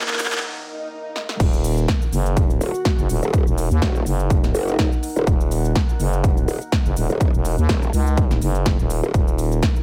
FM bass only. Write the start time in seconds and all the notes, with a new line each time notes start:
1.40 D#1
2.13 F#1
2.98 F#1
3.09 D#1
3.47 E1
3.71 D#2
4.06 F#1
5.27 D#1
6.00 F#1
6.86 F#1
6.96 D#1
7.34 E1
7.58 D#2
7.93 C#2
8.42 F#1
8.79 D#1
9.14 D#1